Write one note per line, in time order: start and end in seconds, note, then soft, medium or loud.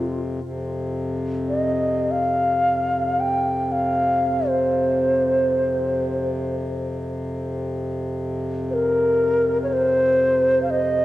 0.00 0.40 F2 medium
0.00 0.40 C3 medium
0.00 0.20 F4 medium
0.41 11.05 F2 medium
0.41 11.05 C3 medium
1.49 2.13 D#5 medium
2.11 3.22 F5 medium
3.20 3.73 G5 medium
3.72 4.50 F5 medium
4.48 6.75 C5 medium
8.70 9.58 A#4 medium
8.70 8.75 C5 medium
9.63 9.68 C#5 medium
9.68 9.74 C#5 medium
9.73 10.62 C5 medium
10.63 10.72 F5 medium
10.70 11.05 D#5 loud